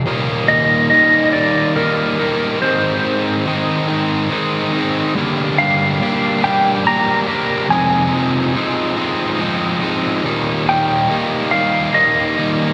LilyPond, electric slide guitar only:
\new Staff \with { instrumentName = "Electric slide guitar" } { \time 6/8 \key ees \major \tempo 4. = 47 r8 ees''8 ees''8 d''8 bes'4 | c''4 r2 | r8 f''4 g''8 bes''4 | aes''4 r2 |
r8 g''4 f''8 ees''4 | }